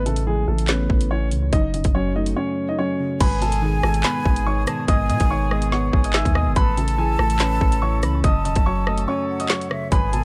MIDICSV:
0, 0, Header, 1, 7, 480
1, 0, Start_track
1, 0, Tempo, 419580
1, 1747, Time_signature, 4, 2, 24, 8
1, 11715, End_track
2, 0, Start_track
2, 0, Title_t, "Flute"
2, 0, Program_c, 0, 73
2, 3667, Note_on_c, 0, 80, 124
2, 5301, Note_off_c, 0, 80, 0
2, 5348, Note_on_c, 0, 81, 88
2, 5576, Note_off_c, 0, 81, 0
2, 5588, Note_on_c, 0, 80, 118
2, 6502, Note_off_c, 0, 80, 0
2, 6548, Note_on_c, 0, 78, 88
2, 6776, Note_off_c, 0, 78, 0
2, 6786, Note_on_c, 0, 80, 90
2, 7463, Note_off_c, 0, 80, 0
2, 7507, Note_on_c, 0, 81, 127
2, 9141, Note_off_c, 0, 81, 0
2, 9186, Note_on_c, 0, 83, 96
2, 9415, Note_off_c, 0, 83, 0
2, 9427, Note_on_c, 0, 81, 106
2, 10341, Note_off_c, 0, 81, 0
2, 10388, Note_on_c, 0, 80, 75
2, 10615, Note_off_c, 0, 80, 0
2, 10628, Note_on_c, 0, 78, 82
2, 11079, Note_off_c, 0, 78, 0
2, 11108, Note_on_c, 0, 76, 96
2, 11335, Note_off_c, 0, 76, 0
2, 11347, Note_on_c, 0, 80, 127
2, 11715, Note_off_c, 0, 80, 0
2, 11715, End_track
3, 0, Start_track
3, 0, Title_t, "Grand piano"
3, 0, Program_c, 1, 0
3, 67, Note_on_c, 1, 69, 72
3, 77, Note_on_c, 1, 57, 63
3, 257, Note_off_c, 1, 69, 0
3, 263, Note_off_c, 1, 57, 0
3, 308, Note_on_c, 1, 68, 88
3, 316, Note_on_c, 1, 56, 62
3, 497, Note_off_c, 1, 68, 0
3, 502, Note_off_c, 1, 56, 0
3, 546, Note_on_c, 1, 69, 70
3, 556, Note_on_c, 1, 57, 57
3, 737, Note_off_c, 1, 69, 0
3, 742, Note_off_c, 1, 57, 0
3, 787, Note_on_c, 1, 71, 77
3, 796, Note_on_c, 1, 59, 61
3, 1238, Note_off_c, 1, 71, 0
3, 1243, Note_off_c, 1, 59, 0
3, 1267, Note_on_c, 1, 73, 88
3, 1276, Note_on_c, 1, 61, 73
3, 1457, Note_off_c, 1, 73, 0
3, 1462, Note_off_c, 1, 61, 0
3, 1747, Note_on_c, 1, 75, 102
3, 1756, Note_on_c, 1, 63, 86
3, 1937, Note_off_c, 1, 75, 0
3, 1942, Note_off_c, 1, 63, 0
3, 1988, Note_on_c, 1, 75, 70
3, 1997, Note_on_c, 1, 63, 55
3, 2178, Note_off_c, 1, 75, 0
3, 2183, Note_off_c, 1, 63, 0
3, 2227, Note_on_c, 1, 73, 87
3, 2237, Note_on_c, 1, 61, 77
3, 2417, Note_off_c, 1, 73, 0
3, 2423, Note_off_c, 1, 61, 0
3, 2468, Note_on_c, 1, 75, 81
3, 2476, Note_on_c, 1, 63, 68
3, 2657, Note_off_c, 1, 75, 0
3, 2662, Note_off_c, 1, 63, 0
3, 2706, Note_on_c, 1, 73, 89
3, 2714, Note_on_c, 1, 61, 75
3, 3052, Note_off_c, 1, 73, 0
3, 3056, Note_off_c, 1, 61, 0
3, 3074, Note_on_c, 1, 75, 79
3, 3084, Note_on_c, 1, 63, 66
3, 3163, Note_off_c, 1, 75, 0
3, 3169, Note_off_c, 1, 63, 0
3, 3187, Note_on_c, 1, 73, 88
3, 3196, Note_on_c, 1, 61, 71
3, 3638, Note_off_c, 1, 73, 0
3, 3643, Note_off_c, 1, 61, 0
3, 3668, Note_on_c, 1, 83, 104
3, 3678, Note_on_c, 1, 71, 80
3, 3858, Note_off_c, 1, 83, 0
3, 3864, Note_off_c, 1, 71, 0
3, 3907, Note_on_c, 1, 81, 85
3, 3917, Note_on_c, 1, 69, 72
3, 4097, Note_off_c, 1, 81, 0
3, 4103, Note_off_c, 1, 69, 0
3, 4148, Note_on_c, 1, 80, 82
3, 4157, Note_on_c, 1, 68, 67
3, 4338, Note_off_c, 1, 80, 0
3, 4343, Note_off_c, 1, 68, 0
3, 4388, Note_on_c, 1, 81, 83
3, 4396, Note_on_c, 1, 69, 67
3, 4577, Note_off_c, 1, 81, 0
3, 4583, Note_off_c, 1, 69, 0
3, 4628, Note_on_c, 1, 83, 101
3, 4638, Note_on_c, 1, 71, 72
3, 5079, Note_off_c, 1, 83, 0
3, 5084, Note_off_c, 1, 71, 0
3, 5108, Note_on_c, 1, 85, 89
3, 5117, Note_on_c, 1, 73, 70
3, 5298, Note_off_c, 1, 85, 0
3, 5303, Note_off_c, 1, 73, 0
3, 5588, Note_on_c, 1, 87, 106
3, 5597, Note_on_c, 1, 75, 86
3, 5777, Note_off_c, 1, 87, 0
3, 5783, Note_off_c, 1, 75, 0
3, 5828, Note_on_c, 1, 87, 83
3, 5837, Note_on_c, 1, 75, 67
3, 6017, Note_off_c, 1, 87, 0
3, 6023, Note_off_c, 1, 75, 0
3, 6069, Note_on_c, 1, 85, 87
3, 6079, Note_on_c, 1, 73, 69
3, 6258, Note_off_c, 1, 85, 0
3, 6264, Note_off_c, 1, 73, 0
3, 6308, Note_on_c, 1, 87, 75
3, 6317, Note_on_c, 1, 75, 61
3, 6498, Note_off_c, 1, 87, 0
3, 6503, Note_off_c, 1, 75, 0
3, 6548, Note_on_c, 1, 85, 86
3, 6557, Note_on_c, 1, 73, 67
3, 6892, Note_off_c, 1, 85, 0
3, 6897, Note_off_c, 1, 73, 0
3, 6916, Note_on_c, 1, 87, 74
3, 6925, Note_on_c, 1, 75, 58
3, 7004, Note_off_c, 1, 87, 0
3, 7010, Note_off_c, 1, 75, 0
3, 7028, Note_on_c, 1, 88, 89
3, 7037, Note_on_c, 1, 76, 72
3, 7218, Note_off_c, 1, 88, 0
3, 7223, Note_off_c, 1, 76, 0
3, 7269, Note_on_c, 1, 87, 86
3, 7278, Note_on_c, 1, 75, 63
3, 7458, Note_off_c, 1, 87, 0
3, 7463, Note_off_c, 1, 75, 0
3, 7509, Note_on_c, 1, 83, 112
3, 7519, Note_on_c, 1, 71, 83
3, 7698, Note_off_c, 1, 83, 0
3, 7704, Note_off_c, 1, 71, 0
3, 7749, Note_on_c, 1, 81, 79
3, 7757, Note_on_c, 1, 69, 64
3, 7938, Note_off_c, 1, 81, 0
3, 7943, Note_off_c, 1, 69, 0
3, 7989, Note_on_c, 1, 80, 93
3, 7998, Note_on_c, 1, 68, 68
3, 8178, Note_off_c, 1, 80, 0
3, 8183, Note_off_c, 1, 68, 0
3, 8228, Note_on_c, 1, 81, 71
3, 8237, Note_on_c, 1, 69, 60
3, 8417, Note_off_c, 1, 81, 0
3, 8423, Note_off_c, 1, 69, 0
3, 8467, Note_on_c, 1, 83, 77
3, 8477, Note_on_c, 1, 71, 61
3, 8918, Note_off_c, 1, 83, 0
3, 8923, Note_off_c, 1, 71, 0
3, 8945, Note_on_c, 1, 85, 90
3, 8955, Note_on_c, 1, 73, 72
3, 9136, Note_off_c, 1, 85, 0
3, 9142, Note_off_c, 1, 73, 0
3, 9425, Note_on_c, 1, 87, 104
3, 9435, Note_on_c, 1, 75, 88
3, 9616, Note_off_c, 1, 87, 0
3, 9622, Note_off_c, 1, 75, 0
3, 9667, Note_on_c, 1, 87, 71
3, 9675, Note_on_c, 1, 75, 54
3, 9857, Note_off_c, 1, 87, 0
3, 9862, Note_off_c, 1, 75, 0
3, 9908, Note_on_c, 1, 85, 90
3, 9916, Note_on_c, 1, 73, 73
3, 10098, Note_off_c, 1, 85, 0
3, 10103, Note_off_c, 1, 73, 0
3, 10149, Note_on_c, 1, 87, 81
3, 10158, Note_on_c, 1, 75, 68
3, 10338, Note_off_c, 1, 87, 0
3, 10343, Note_off_c, 1, 75, 0
3, 10386, Note_on_c, 1, 85, 89
3, 10395, Note_on_c, 1, 73, 75
3, 10732, Note_off_c, 1, 85, 0
3, 10736, Note_off_c, 1, 73, 0
3, 10753, Note_on_c, 1, 87, 82
3, 10762, Note_on_c, 1, 75, 69
3, 10842, Note_off_c, 1, 87, 0
3, 10848, Note_off_c, 1, 75, 0
3, 10867, Note_on_c, 1, 85, 94
3, 10876, Note_on_c, 1, 73, 73
3, 11318, Note_off_c, 1, 85, 0
3, 11323, Note_off_c, 1, 73, 0
3, 11346, Note_on_c, 1, 83, 106
3, 11355, Note_on_c, 1, 71, 77
3, 11537, Note_off_c, 1, 83, 0
3, 11542, Note_off_c, 1, 71, 0
3, 11586, Note_on_c, 1, 81, 84
3, 11596, Note_on_c, 1, 69, 68
3, 11715, Note_off_c, 1, 69, 0
3, 11715, Note_off_c, 1, 81, 0
3, 11715, End_track
4, 0, Start_track
4, 0, Title_t, "Woodwind section"
4, 0, Program_c, 2, 71
4, 3667, Note_on_c, 2, 68, 86
4, 3668, Note_on_c, 2, 51, 79
4, 3668, Note_on_c, 2, 56, 73
4, 3668, Note_on_c, 2, 59, 73
4, 7469, Note_off_c, 2, 51, 0
4, 7469, Note_off_c, 2, 56, 0
4, 7469, Note_off_c, 2, 59, 0
4, 7469, Note_off_c, 2, 68, 0
4, 7505, Note_on_c, 2, 61, 73
4, 7506, Note_on_c, 2, 52, 80
4, 7506, Note_on_c, 2, 69, 87
4, 7507, Note_on_c, 2, 57, 72
4, 9407, Note_off_c, 2, 52, 0
4, 9407, Note_off_c, 2, 69, 0
4, 9426, Note_on_c, 2, 54, 81
4, 9427, Note_on_c, 2, 69, 88
4, 11153, Note_off_c, 2, 54, 0
4, 11153, Note_off_c, 2, 57, 0
4, 11153, Note_off_c, 2, 61, 0
4, 11153, Note_off_c, 2, 69, 0
4, 11347, Note_on_c, 2, 51, 80
4, 11348, Note_on_c, 2, 56, 70
4, 11348, Note_on_c, 2, 59, 73
4, 11348, Note_on_c, 2, 68, 88
4, 11715, Note_off_c, 2, 51, 0
4, 11715, Note_off_c, 2, 56, 0
4, 11715, Note_off_c, 2, 59, 0
4, 11715, Note_off_c, 2, 68, 0
4, 11715, End_track
5, 0, Start_track
5, 0, Title_t, "Synth keys"
5, 0, Program_c, 3, 88
5, 0, Note_on_c, 3, 45, 90
5, 52, Control_c, 3, 64, 127
5, 69, Note_on_c, 3, 49, 90
5, 306, Note_on_c, 3, 52, 93
5, 548, Note_on_c, 3, 57, 87
5, 792, Note_on_c, 3, 61, 96
5, 1029, Note_off_c, 3, 45, 0
5, 1252, Note_off_c, 3, 52, 0
5, 1266, Note_on_c, 3, 52, 87
5, 1268, Note_off_c, 3, 49, 0
5, 1509, Note_on_c, 3, 49, 76
5, 1746, Note_off_c, 3, 52, 0
5, 1746, Note_on_c, 3, 42, 94
5, 1748, Note_off_c, 3, 49, 0
5, 1748, Note_off_c, 3, 57, 0
5, 1749, Note_off_c, 3, 61, 0
5, 1762, Control_c, 3, 64, 0
5, 1940, Control_c, 3, 64, 127
5, 1993, Note_on_c, 3, 49, 80
5, 2228, Note_on_c, 3, 54, 90
5, 2467, Note_on_c, 3, 57, 85
5, 2706, Note_on_c, 3, 61, 101
5, 2947, Note_off_c, 3, 42, 0
5, 3175, Note_off_c, 3, 54, 0
5, 3188, Note_on_c, 3, 54, 82
5, 3190, Note_off_c, 3, 49, 0
5, 3429, Note_on_c, 3, 49, 81
5, 3667, Note_off_c, 3, 57, 0
5, 3667, Note_off_c, 3, 61, 0
5, 3668, Note_off_c, 3, 49, 0
5, 3668, Note_off_c, 3, 54, 0
5, 3671, Note_on_c, 3, 44, 90
5, 3683, Control_c, 3, 64, 0
5, 3899, Control_c, 3, 64, 127
5, 3905, Note_on_c, 3, 47, 86
5, 4141, Note_on_c, 3, 51, 95
5, 4383, Note_on_c, 3, 56, 85
5, 4631, Note_on_c, 3, 59, 93
5, 4869, Note_off_c, 3, 44, 0
5, 5092, Note_off_c, 3, 51, 0
5, 5105, Note_on_c, 3, 51, 91
5, 5106, Note_off_c, 3, 47, 0
5, 5341, Note_on_c, 3, 47, 81
5, 5585, Note_off_c, 3, 56, 0
5, 5590, Note_on_c, 3, 44, 96
5, 5816, Note_off_c, 3, 47, 0
5, 5829, Note_off_c, 3, 59, 0
5, 5829, Note_on_c, 3, 47, 83
5, 6052, Note_off_c, 3, 51, 0
5, 6066, Note_on_c, 3, 51, 89
5, 6303, Note_on_c, 3, 56, 83
5, 6546, Note_on_c, 3, 59, 97
5, 6789, Note_off_c, 3, 44, 0
5, 7015, Note_off_c, 3, 51, 0
5, 7028, Note_off_c, 3, 47, 0
5, 7029, Note_on_c, 3, 51, 89
5, 7266, Note_on_c, 3, 47, 79
5, 7505, Note_off_c, 3, 56, 0
5, 7506, Note_off_c, 3, 47, 0
5, 7507, Note_off_c, 3, 59, 0
5, 7508, Note_off_c, 3, 51, 0
5, 7510, Note_on_c, 3, 45, 93
5, 7522, Control_c, 3, 64, 0
5, 7692, Control_c, 3, 64, 127
5, 7749, Note_on_c, 3, 49, 92
5, 7984, Note_on_c, 3, 52, 96
5, 8228, Note_on_c, 3, 57, 91
5, 8471, Note_on_c, 3, 61, 97
5, 8709, Note_off_c, 3, 45, 0
5, 8932, Note_off_c, 3, 52, 0
5, 8946, Note_on_c, 3, 52, 89
5, 8948, Note_off_c, 3, 49, 0
5, 9190, Note_on_c, 3, 49, 81
5, 9426, Note_off_c, 3, 52, 0
5, 9427, Note_on_c, 3, 42, 94
5, 9428, Note_off_c, 3, 57, 0
5, 9429, Note_off_c, 3, 49, 0
5, 9429, Note_off_c, 3, 61, 0
5, 9443, Control_c, 3, 64, 0
5, 9675, Control_c, 3, 64, 127
5, 9676, Note_on_c, 3, 49, 78
5, 9909, Note_on_c, 3, 54, 90
5, 10148, Note_on_c, 3, 57, 86
5, 10387, Note_on_c, 3, 61, 106
5, 10627, Note_off_c, 3, 42, 0
5, 10855, Note_off_c, 3, 54, 0
5, 10868, Note_on_c, 3, 54, 82
5, 10871, Note_off_c, 3, 49, 0
5, 11110, Note_on_c, 3, 49, 87
5, 11347, Note_off_c, 3, 57, 0
5, 11347, Note_off_c, 3, 61, 0
5, 11348, Note_off_c, 3, 49, 0
5, 11348, Note_off_c, 3, 54, 0
5, 11350, Note_on_c, 3, 44, 92
5, 11361, Control_c, 3, 64, 0
5, 11580, Control_c, 3, 64, 127
5, 11586, Note_on_c, 3, 47, 90
5, 11715, Note_off_c, 3, 44, 0
5, 11715, Note_off_c, 3, 47, 0
5, 11715, End_track
6, 0, Start_track
6, 0, Title_t, "808-style bass"
6, 0, Program_c, 4, 38
6, 0, Note_on_c, 4, 33, 116
6, 518, Note_off_c, 4, 33, 0
6, 547, Note_on_c, 4, 33, 105
6, 1008, Note_off_c, 4, 33, 0
6, 1027, Note_on_c, 4, 33, 108
6, 1506, Note_on_c, 4, 37, 100
6, 1524, Note_off_c, 4, 33, 0
6, 1735, Note_off_c, 4, 37, 0
6, 1747, Note_on_c, 4, 30, 112
6, 1986, Note_on_c, 4, 28, 96
6, 2003, Note_off_c, 4, 30, 0
6, 2107, Note_off_c, 4, 28, 0
6, 2114, Note_on_c, 4, 30, 103
6, 2683, Note_off_c, 4, 30, 0
6, 3667, Note_on_c, 4, 32, 114
6, 4358, Note_off_c, 4, 32, 0
6, 4387, Note_on_c, 4, 32, 104
6, 4617, Note_off_c, 4, 32, 0
6, 4867, Note_on_c, 4, 32, 110
6, 5328, Note_off_c, 4, 32, 0
6, 5587, Note_on_c, 4, 32, 112
6, 5827, Note_on_c, 4, 47, 98
6, 5844, Note_off_c, 4, 32, 0
6, 5948, Note_off_c, 4, 47, 0
6, 5954, Note_on_c, 4, 32, 101
6, 6754, Note_off_c, 4, 32, 0
6, 6787, Note_on_c, 4, 32, 109
6, 7140, Note_off_c, 4, 32, 0
6, 7154, Note_on_c, 4, 39, 107
6, 7394, Note_on_c, 4, 30, 101
6, 7411, Note_off_c, 4, 39, 0
6, 7501, Note_off_c, 4, 30, 0
6, 7507, Note_on_c, 4, 33, 116
6, 8198, Note_off_c, 4, 33, 0
6, 8227, Note_on_c, 4, 33, 104
6, 8688, Note_off_c, 4, 33, 0
6, 8707, Note_on_c, 4, 33, 114
6, 9186, Note_on_c, 4, 37, 102
6, 9203, Note_off_c, 4, 33, 0
6, 9415, Note_off_c, 4, 37, 0
6, 9427, Note_on_c, 4, 30, 112
6, 9666, Note_on_c, 4, 28, 99
6, 9683, Note_off_c, 4, 30, 0
6, 9787, Note_off_c, 4, 28, 0
6, 9794, Note_on_c, 4, 30, 104
6, 10363, Note_off_c, 4, 30, 0
6, 11347, Note_on_c, 4, 32, 120
6, 11715, Note_off_c, 4, 32, 0
6, 11715, End_track
7, 0, Start_track
7, 0, Title_t, "Drums"
7, 69, Note_on_c, 9, 42, 82
7, 184, Note_off_c, 9, 42, 0
7, 187, Note_on_c, 9, 42, 84
7, 301, Note_off_c, 9, 42, 0
7, 668, Note_on_c, 9, 42, 75
7, 777, Note_on_c, 9, 39, 89
7, 780, Note_off_c, 9, 42, 0
7, 780, Note_on_c, 9, 42, 67
7, 786, Note_on_c, 9, 38, 113
7, 891, Note_off_c, 9, 39, 0
7, 894, Note_off_c, 9, 42, 0
7, 901, Note_off_c, 9, 38, 0
7, 1027, Note_on_c, 9, 36, 97
7, 1141, Note_off_c, 9, 36, 0
7, 1152, Note_on_c, 9, 42, 76
7, 1266, Note_off_c, 9, 42, 0
7, 1504, Note_on_c, 9, 42, 77
7, 1618, Note_off_c, 9, 42, 0
7, 1746, Note_on_c, 9, 42, 82
7, 1747, Note_on_c, 9, 36, 113
7, 1860, Note_off_c, 9, 42, 0
7, 1861, Note_off_c, 9, 36, 0
7, 1989, Note_on_c, 9, 42, 81
7, 2104, Note_off_c, 9, 42, 0
7, 2107, Note_on_c, 9, 42, 82
7, 2114, Note_on_c, 9, 36, 100
7, 2221, Note_off_c, 9, 42, 0
7, 2229, Note_off_c, 9, 36, 0
7, 2589, Note_on_c, 9, 42, 76
7, 2703, Note_off_c, 9, 42, 0
7, 3666, Note_on_c, 9, 42, 87
7, 3667, Note_on_c, 9, 36, 117
7, 3667, Note_on_c, 9, 49, 106
7, 3780, Note_off_c, 9, 42, 0
7, 3781, Note_off_c, 9, 49, 0
7, 3782, Note_off_c, 9, 36, 0
7, 3910, Note_on_c, 9, 42, 82
7, 4024, Note_off_c, 9, 42, 0
7, 4027, Note_on_c, 9, 42, 83
7, 4142, Note_off_c, 9, 42, 0
7, 4386, Note_on_c, 9, 37, 97
7, 4501, Note_off_c, 9, 37, 0
7, 4509, Note_on_c, 9, 42, 78
7, 4617, Note_on_c, 9, 39, 94
7, 4621, Note_off_c, 9, 42, 0
7, 4621, Note_on_c, 9, 42, 69
7, 4627, Note_on_c, 9, 38, 118
7, 4732, Note_off_c, 9, 39, 0
7, 4735, Note_off_c, 9, 42, 0
7, 4741, Note_off_c, 9, 38, 0
7, 4867, Note_on_c, 9, 36, 100
7, 4982, Note_off_c, 9, 36, 0
7, 4992, Note_on_c, 9, 42, 72
7, 5106, Note_off_c, 9, 42, 0
7, 5344, Note_on_c, 9, 42, 78
7, 5347, Note_on_c, 9, 37, 99
7, 5459, Note_off_c, 9, 42, 0
7, 5462, Note_off_c, 9, 37, 0
7, 5586, Note_on_c, 9, 42, 86
7, 5587, Note_on_c, 9, 36, 121
7, 5700, Note_off_c, 9, 42, 0
7, 5701, Note_off_c, 9, 36, 0
7, 5830, Note_on_c, 9, 42, 82
7, 5944, Note_off_c, 9, 42, 0
7, 5947, Note_on_c, 9, 42, 80
7, 5954, Note_on_c, 9, 36, 101
7, 6062, Note_off_c, 9, 42, 0
7, 6069, Note_off_c, 9, 36, 0
7, 6307, Note_on_c, 9, 37, 95
7, 6421, Note_off_c, 9, 37, 0
7, 6428, Note_on_c, 9, 42, 77
7, 6543, Note_off_c, 9, 42, 0
7, 6547, Note_on_c, 9, 38, 70
7, 6661, Note_off_c, 9, 38, 0
7, 6787, Note_on_c, 9, 36, 99
7, 6902, Note_off_c, 9, 36, 0
7, 6912, Note_on_c, 9, 42, 78
7, 7017, Note_on_c, 9, 39, 96
7, 7026, Note_off_c, 9, 42, 0
7, 7026, Note_on_c, 9, 38, 115
7, 7131, Note_off_c, 9, 39, 0
7, 7141, Note_off_c, 9, 38, 0
7, 7154, Note_on_c, 9, 36, 98
7, 7160, Note_on_c, 9, 42, 71
7, 7267, Note_on_c, 9, 37, 96
7, 7268, Note_off_c, 9, 36, 0
7, 7274, Note_off_c, 9, 42, 0
7, 7382, Note_off_c, 9, 37, 0
7, 7506, Note_on_c, 9, 42, 86
7, 7507, Note_on_c, 9, 36, 116
7, 7621, Note_off_c, 9, 42, 0
7, 7622, Note_off_c, 9, 36, 0
7, 7750, Note_on_c, 9, 42, 81
7, 7865, Note_off_c, 9, 42, 0
7, 7868, Note_on_c, 9, 42, 82
7, 7982, Note_off_c, 9, 42, 0
7, 8226, Note_on_c, 9, 37, 96
7, 8341, Note_off_c, 9, 37, 0
7, 8350, Note_on_c, 9, 42, 80
7, 8458, Note_on_c, 9, 39, 94
7, 8461, Note_off_c, 9, 42, 0
7, 8461, Note_on_c, 9, 42, 70
7, 8468, Note_on_c, 9, 38, 120
7, 8573, Note_off_c, 9, 39, 0
7, 8576, Note_off_c, 9, 42, 0
7, 8582, Note_off_c, 9, 38, 0
7, 8708, Note_on_c, 9, 36, 100
7, 8822, Note_off_c, 9, 36, 0
7, 8833, Note_on_c, 9, 42, 76
7, 8947, Note_off_c, 9, 42, 0
7, 9184, Note_on_c, 9, 42, 79
7, 9188, Note_on_c, 9, 37, 94
7, 9299, Note_off_c, 9, 42, 0
7, 9302, Note_off_c, 9, 37, 0
7, 9426, Note_on_c, 9, 42, 89
7, 9427, Note_on_c, 9, 36, 120
7, 9540, Note_off_c, 9, 42, 0
7, 9541, Note_off_c, 9, 36, 0
7, 9670, Note_on_c, 9, 42, 80
7, 9784, Note_off_c, 9, 42, 0
7, 9787, Note_on_c, 9, 42, 83
7, 9794, Note_on_c, 9, 36, 99
7, 9901, Note_off_c, 9, 42, 0
7, 9909, Note_off_c, 9, 36, 0
7, 10146, Note_on_c, 9, 37, 97
7, 10260, Note_off_c, 9, 37, 0
7, 10268, Note_on_c, 9, 42, 76
7, 10382, Note_off_c, 9, 42, 0
7, 10751, Note_on_c, 9, 42, 74
7, 10856, Note_on_c, 9, 39, 96
7, 10866, Note_off_c, 9, 42, 0
7, 10866, Note_on_c, 9, 38, 119
7, 10971, Note_off_c, 9, 39, 0
7, 10980, Note_off_c, 9, 38, 0
7, 10999, Note_on_c, 9, 42, 72
7, 11107, Note_on_c, 9, 37, 101
7, 11113, Note_off_c, 9, 42, 0
7, 11222, Note_off_c, 9, 37, 0
7, 11346, Note_on_c, 9, 42, 86
7, 11347, Note_on_c, 9, 36, 118
7, 11460, Note_off_c, 9, 42, 0
7, 11461, Note_off_c, 9, 36, 0
7, 11590, Note_on_c, 9, 42, 80
7, 11704, Note_off_c, 9, 42, 0
7, 11715, End_track
0, 0, End_of_file